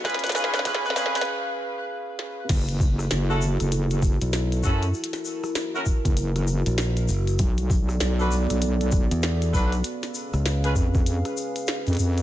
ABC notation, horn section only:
X:1
M:4/4
L:1/16
Q:"Swing 16ths" 1/4=98
K:F#m
V:1 name="Horn section"
[C^EG] z [CEG] z [CEG] z [CEG] z8 z | z4 z [CEFA] z8 [CEFA] z | z4 z [CEF^A] z8 z2 | z4 z [DFAB] z8 [DFAB] z |
z4 z [C^EGB] z8 z2 |]